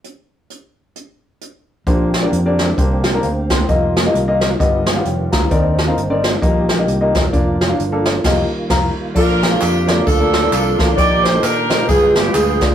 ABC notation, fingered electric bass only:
X:1
M:4/4
L:1/8
Q:"Swing" 1/4=132
K:Bb
V:1 name="Fingered electric bass" clef=bass
z8 | B,,,2 F,,2 C,,2 D,,2 | F,,,2 C,,2 G,,,2 F,,, D,, | E,,2 G,,,2 B,,,2 C,, =E,,, |
F,,,2 G,,,2 F,,, z F,,, z | B,,,2 F,,2 D,,2 C,, A,,, | B,,,2 B,,2 G,,,2 D,,2 |]